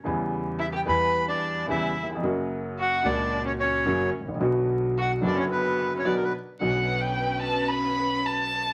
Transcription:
<<
  \new Staff \with { instrumentName = "Bandoneon" } { \time 4/4 \key b \minor \tempo 4 = 110 r4 e''16 g''16 b''8. d''8. e''8. r16 | r4 fis''8 d''8. cis''16 cis''4 r8 | r4 fis''8 d''16 cis''16 \tuplet 3/2 { b'4~ b'16 cis''16 b'16 ais'16 b'16 r8. } | r1 | }
  \new Staff \with { instrumentName = "String section" } { \time 4/4 \key b \minor r1 | r1 | r1 | <cis' b'>1 | }
  \new Staff \with { instrumentName = "Violin" } { \time 4/4 \key b \minor r4 e'16 g'16 b'8. d'8. e'8. r16 | r4 fis'8 d'8. cis'16 cis'4 r8 | r4 fis'8 d'16 cis'16 \tuplet 3/2 { b4~ b16 cis'16 } d''4 | fis''8. g''8. a''8 b''4 a''4 | }
  \new Staff \with { instrumentName = "Upright piano" } { \clef bass \time 4/4 \key b \minor <e, cis e g e'>4. <e, e g e'>4. <e, cis e g e'>8 r32 dis,32 e,32 eis,32 | <fis, cis fis ais fis'>4. <cis, ais, fis ais fis'>4. <fis, cis fis ais fis'>8 r32 gis,,32 a,,32 ais,,32 | <b,, b, d fis b fis'>4. <fis,, fis, d fis b fis'>4. <b,, b, d fis b fis'>8 r8 | <b,, b, d fis b cis'>1 | }
  \new Staff \with { instrumentName = "Upright bass" } { \clef bass \time 4/4 \key b \minor e,4~ e,16. r32 e,4~ e,16. r32 e,16. r8 r32 | fis,,4~ fis,,16. r32 cis,4~ cis,16. r32 fis,,16. r16 gis,,32 a,,32 ais,,32 | b,,4~ b,,16. r32 fis,,16. r2 r32 | b,,2.~ b,,8. r16 | }
>>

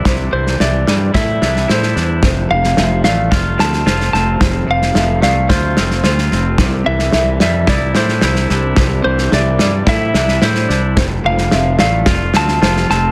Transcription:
<<
  \new Staff \with { instrumentName = "Electric slide guitar" } { \time 4/4 \key c \major \tempo 4 = 110 r8 c''8 d''4 e''4 c''8. r16 | r8 f''4 f''8 r8 a''4 a''8 | r8 f''4 f''8 c''4. r8 | r8 e''4 e''8 d''8 c''4 r8 |
r8 c''8 d''4 e''4 c''8. r16 | r8 f''4 f''8 r8 a''4 a''8 | }
  \new Staff \with { instrumentName = "Felt piano" } { \time 4/4 \key c \major c''4 e''8 d''4 r8 c''4 | c''4 e''8 d''4 r8 c''4 | c''4 e''8 d''4 r8 c''4 | c''4 e''8 d''4 r8 c''4 |
c''4 e''8 d''4 r8 c''4 | c''4 e''8 d''4 r8 c''4 | }
  \new Staff \with { instrumentName = "Ambient pad" } { \time 4/4 \key c \major << { c''1~ | c''1~ | c''1~ | c''1~ |
c''1 | c''1 | } \\ { <g d' e'>1 | <a c' f'>1~ | <a c' f'>1 | <g d' e'>1~ |
<g d' e'>1 | <a c' f'>1 | } >> }
  \new Staff \with { instrumentName = "Clean electric guitar" } { \time 4/4 \key c \major <c d' e'>8 e8 e8 g8 e'8 d'8 e'8 d'8 | f,8 c8 f8 a8 f'8 c'8 f'8 c'8 | f,8 c8 f8 a8 f'8 c'8 f'8 c'8 | c8 e8 e8 g8 e'8 d'8 e'8 d'8 |
c8 e8 e8 g8 e'8 d'8 e'8 d'8 | f,8 c8 f8 a8 f'8 c'8 f'8 c'8 | }
  \new Staff \with { instrumentName = "Fingered electric bass" } { \clef bass \time 4/4 \key c \major c,8 c,8 c,8 g,8 a,8 c,8 a,8 e,8 | f,,8 f,,8 f,,8 a,,8 f,,8 d,8 f,,8 f,,8 | f,,8 f,,8 f,,8 c,8 d,8 f,,8 d,8 f,,8 | c,8 c,8 c,8 f,8 c,8 a,8 c,8 c,8 |
c,8 c,8 c,8 g,8 a,8 c,8 a,8 c,8 | f,,8 f,,8 f,,8 a,,8 f,,8 d,8 f,,8 f,,8 | }
  \new DrumStaff \with { instrumentName = "Drums" } \drummode { \time 4/4 <bd sn>8. sn16 sn8 sn8 <bd sn>8 sn16 sn16 sn16 sn16 sn8 | <bd sn>8. sn16 sn8 sn8 <bd sn>8 sn16 sn16 sn16 sn16 sn8 | <bd sn>8. sn16 sn8 sn8 <bd sn>8 sn16 sn16 sn16 sn16 sn8 | <bd sn>8. sn16 sn8 sn8 <bd sn>8 sn16 sn16 sn16 sn16 sn8 |
<bd sn>8. sn16 sn8 sn8 <bd sn>8 sn16 sn16 sn16 sn16 sn8 | <bd sn>8. sn16 sn8 sn8 <bd sn>8 sn16 sn16 sn16 sn16 sn8 | }
>>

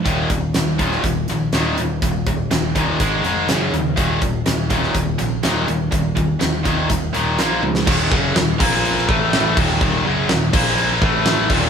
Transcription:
<<
  \new Staff \with { instrumentName = "Distorted electric guitar" } { \clef bass \time 4/4 \key ees \minor \tempo 4 = 123 <ees, bes, ees>8 <ees, bes,>8 <ees, bes,>8 <ees, bes, ees>8 <ees, bes,>8 <ees, bes,>8 <ees, bes, ees>8 <ees, bes,>8 | <ees, bes,>8 <ees, bes,>8 <ees, bes,>8 <ees, bes, ees>8 <aes, ees aes>8 <aes, ees aes>8 <ges, des ges>8 <ges, des>8 | <ees, bes, ees>8 <ees, bes,>8 <ees, bes,>8 <ees, bes, ees>8 <ees, bes,>8 <ees, bes,>8 <ees, bes, ees>8 <ees, bes,>8 | <ees, bes,>8 <ees, bes,>8 <ees, bes,>8 <ees, bes, ees>8 <ees, bes,>8 <ees, bes, ees>8 <bes, f bes>8 <bes, f>8 |
<ees, bes, ees>8 <ges, des ges>8 <ees, bes,>8 <bes, f bes>4 <a, e a>4 <ees, bes, ees>8 | <ees, bes, ees>8 <ges, des ges>8 <ees, bes,>8 <bes, f bes>4 <a, e a>4 <ees, bes, ees>8 | }
  \new Staff \with { instrumentName = "Picked electric bass" } { \clef bass \time 4/4 \key ees \minor ees,,8 ees,,8 ees,,4 ees,,8 bes,,8 ees,,8 ees,,8 | ees,,4 ees,,8 ees,8 aes,,8 f,,8 ges,,8 ees,8 | ees,,8 ees,,8 ees,,4 ees,,8 bes,,8 ees,,8 ees,,8 | ees,,4 ees,,8 ees,8 ees,,8 ees,,8 bes,,8 des,8 |
ees,,8 ges,,8 ees,,8 bes,,4 a,,4 ees,,8 | ees,,8 ges,,8 ees,,8 bes,,4 a,,4 ees,,8 | }
  \new DrumStaff \with { instrumentName = "Drums" } \drummode { \time 4/4 <hh bd>8 <hh bd>8 <hh sn>8 <hh bd>16 sn16 <hh bd>8 <hh sn>8 <hh sn>8 hh8 | <hh bd>8 <hh bd>8 <hh sn>8 <hh bd>8 <hh bd>8 <hh sn>8 <hh sn>8 hh8 | <hh bd>8 <hh bd>8 <hh sn>8 <hh bd>16 sn16 <hh bd>8 <hh sn>8 <hh sn>8 hh8 | <hh bd>8 <hh bd>8 <hh sn>8 <hh bd>8 <hh bd>8 <hh sn>8 <hh sn>8 tommh16 sn16 |
<cymc bd>8 bd8 <cymc sn>8 <cymc bd>8 cymc16 sn16 bd8 <cymc sn>8 <cymc bd>8 | <cymc bd>4 <cymc sn>8 <cymc bd>8 cymc8 bd8 <cymc sn>8 <cymc bd>8 | }
>>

